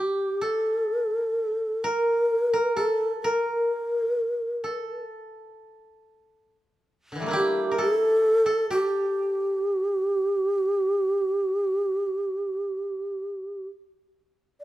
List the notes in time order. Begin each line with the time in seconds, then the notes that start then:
Already playing: G4
0.41 A4
1.84 A#4
2.53 A#4
2.76 A4
3.21 A#4
4.64 A4
7.12 D3 E3
7.20 G3 A3
7.26 A#3 D4
7.31 E4 G4
7.36 G4
7.71 A#4
7.78 A4
8.46 A4
8.71 G4
14.60 D5